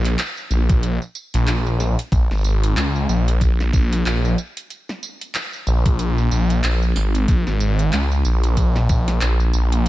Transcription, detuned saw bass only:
Already playing: A#1
0.50 A#1
1.34 A#1
2.12 A#1
2.31 G#1
2.77 C#2
3.09 A#1
3.73 A#1
4.06 A#1
5.67 A#1
6.31 A#1
6.64 A#1
6.96 G#1
7.28 A#1
7.47 G#1
7.93 C#2
8.25 A#1
8.89 A#1
9.22 A#1
9.54 A#1

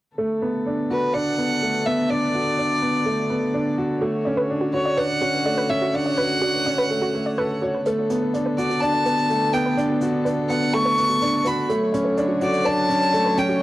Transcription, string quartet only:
0.16 D3 B3 A4
4.01 F#4 C#5
7.85 D3 B3 A4
11.69 D3 F#3 C#5

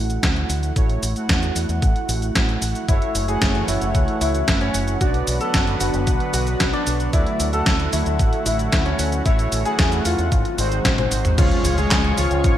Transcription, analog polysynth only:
Already playing: A3 E4 F#4 F#5
0.76 A3 E4 F#4 C#5
1.16 A3 E4 F#4 F#5
2.88 A3 E4 F#4 C#5
3.28 A3 E4 F#4 F#5
5.01 B3 D4 F#4 D5
5.41 B3 D4 F#4 F#5
7.13 A3 E4 F#4 D5
7.53 A3 E4 F#4 F#5
9.26 A3 E4 F#4 C#5
9.65 A3 E4 F#4 F#5
10.58 G#3 D#4 F#4 C5
11.38 G#3 C#4 F4 C#5
11.78 G#3 C#4 F4 C#5

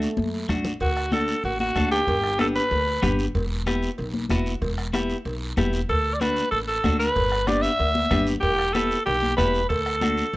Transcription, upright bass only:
0.18 F#2
0.49 A1
0.81 D2
1.44 A1
1.76 D2
2.07 G1
2.71 D2
3.03 G1
3.35 E1
3.99 B1
4.30 E1
4.62 E1
5.25 B1
5.57 E1
5.89 D2
6.52 A1
6.84 D2
7.16 G1
7.80 D2
8.11 G1
8.43 E1
9.07 B1
9.38 E1
9.70 D2
10.33 A1

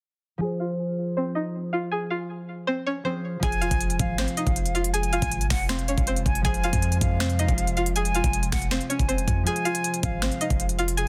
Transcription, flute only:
3.43 G#5
4.00 F5
4.93 G#5
5.50 F#5
5.69 F5
6.26 G#5
6.44 G#5
7.01 F5
7.95 G#5
8.52 F#5
8.71 F5
8.90 G#5
9.47 G#5
10.04 F5
10.97 G#5

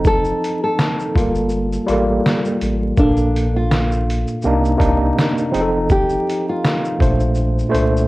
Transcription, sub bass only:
Already playing: F1
1.16 G1
1.88 A1
2.61 A1
2.98 A#1
4.44 C2
4.80 C2
5.54 F1
7.01 A#1
7.73 C2

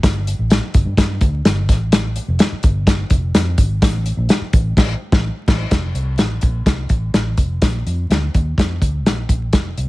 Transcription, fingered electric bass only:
0.03 G1
0.39 A1
0.75 G1
0.85 G2
0.97 G2
1.21 D2
1.45 G1
1.69 A1
2.28 F1
2.52 muted fingered electric bass stroke
2.63 G1
3.11 F1
3.35 F2
3.58 G#1
3.82 A1
4.17 A#1
4.41 muted fingered electric bass stroke
4.53 A1
4.77 A1
5.13 A1
5.48 A1
5.72 F1
5.94 C2
6.18 A1
6.42 A#1
6.66 C2
6.90 A1
7.13 A1
7.38 F1
7.62 A#1
7.86 F2
8.10 D2
8.34 D#2
8.58 F2
8.82 D2
9.05 A#1
9.29 A#1
9.53 F1
9.77 C2

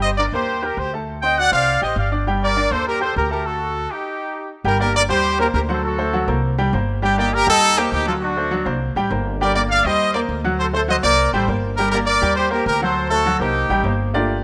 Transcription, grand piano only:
Already playing: G3 G4 G5
0.19 D4 D5 D6
0.33 A#3 A#4 A#5
0.62 G4 G5 G6
0.93 A3 A4 A5
1.23 C4 C5 C6
1.38 F#4 F#5 F#6
1.52 C4 C5 C6
1.82 G4 G5 G6
2.12 D4 D5 D6
2.27 G3 G4 G5
2.56 D4 D5 D6
2.71 A#3 A#4 A#5
3.00 G4 G5 G6
3.31 A3 A4 A5
4.65 G3 G4 G5
4.80 A#3 A#4 D5
5.09 G3 G4 G5
5.39 A#3 A#4 C5
5.69 F#3 F#4 F#5
5.98 A3 A4 C5
6.13 F#3 F#4 F#5
6.28 A#3 A#4 C5
6.58 G3 G4 G5
6.73 A#3 A#4 C5
7.02 G3 G4 G5
7.18 A#3 A#4 D5
7.47 G3 G4 G5
7.77 A#3 A#4 C5
8.06 F#3 F#4 F#5
8.36 A3 A4 C5
8.51 F#3 F#4 F#5
8.65 A#3 A#4 C5
8.96 G3 G4 G5
9.11 A#3 A#4 C5
9.41 G3 G4 G5
9.55 A#3 A#4 D5
9.86 G3 G4 G5
10.14 A#3 A#4 C5
10.44 F#3 F#4 F#5
10.73 A3 A4 C5
10.88 F#3 F#4 F#5
11.03 A#3 A#4 C5
11.34 G3 G4 G5
11.48 A#3 A#4 C5
11.79 G3 G4 G5
11.93 A#3 A#4 D5
12.22 G3 G4 G5
12.50 A#3 A#4 C5
12.82 F#3 F#4 F#5
13.10 A3 A4 C5
13.26 F#3 F#4 F#5
13.40 A#3 A#4 C5
13.70 G3 G4 G5
13.84 A#3 A#4 C5
14.13 A3 A#3 D4 F4 G4 A#4 D5

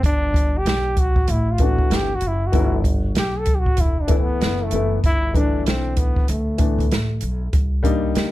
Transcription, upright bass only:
0.04 G1
0.66 B1
1.28 A1
1.78 muted upright bass stroke
1.90 G1
2.22 F#1
2.53 G1
3.16 B1
3.66 muted upright bass stroke
3.78 E1
4.29 muted upright bass stroke
4.41 F#1
4.72 F#1
5.04 G1
5.67 B1
6.16 muted upright bass stroke
6.29 D2
6.91 A1
7.22 B1
7.53 C2
8.15 D2

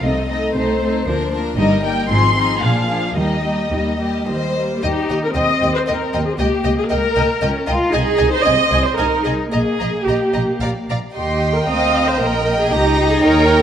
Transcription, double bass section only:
0.04 C2
0.55 C2
1.07 D2
1.58 G1
2.09 G#1
2.63 A#1
3.17 D#2
3.73 D#2
4.28 D#2
4.83 D#2
5.10 D#2
5.35 D#2
5.62 D#2
5.87 D#2
6.13 D#2
6.39 C#2
6.64 C#2
6.91 C#2
7.16 C#2
7.42 C#2
7.68 C#2
7.93 C2
8.20 C2
8.46 C2
8.72 C2
8.99 C2
9.26 C2
9.53 A#1
9.80 A#1
10.07 A#1
10.35 A#1
10.61 A#1
10.89 A#1
11.16 D#2
11.68 D2
12.20 A#1
12.72 C#2
13.24 D#2

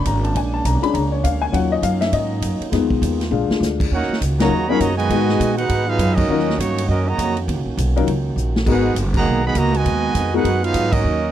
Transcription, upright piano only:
0.07 A#5
0.24 A5
0.37 G#5
0.54 A5
0.65 A#5
0.82 G#3 C#4 D4 B5
0.94 A#5
1.12 C#5
1.24 F5
1.42 G#5
1.52 F#3 C#4 F4 F#5
1.72 D#5
1.83 F5
2.01 E5
2.14 D#5
2.72 G#3 B3 D#4
3.31 G#3 D4 F4
4.40 F#3 C#4 D#4 F4 A#4
4.69 F#3 C#4 D#4 F4 A#4
5.10 G#3 B3 D#4 F#4 B4
6.30 F#3 C#4 D#4 F4 A#4
7.96 F#3 C#4 D#4 F4 A#4
8.66 G#3 B3 D#4 F#4 A#4
10.34 G#3 B3 D#4 F#4 A#4

